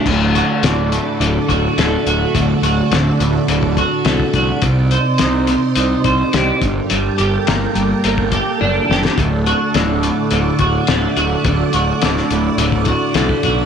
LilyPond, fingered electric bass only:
\new Staff \with { instrumentName = "Fingered electric bass" } { \clef bass \time 4/4 \tempo 4 = 106 d,,4 d,,4 d,,8 d,,8 d,,8 d,,8 | d,,8 d,,8 d,,8 d,,8 d,,4 c,8 c,8 | c,4 c,4 c,8 c,8 c,8 g,,8 | g,,8 g,,8 g,,8 g,,8 g,,4 fis,,8 fis,,8 |
d,,4 d,,4 d,,8 d,,8 d,,8 d,,8 | d,,8 d,,8 d,,8 d,,8 d,,4 c,8 b,,8 | }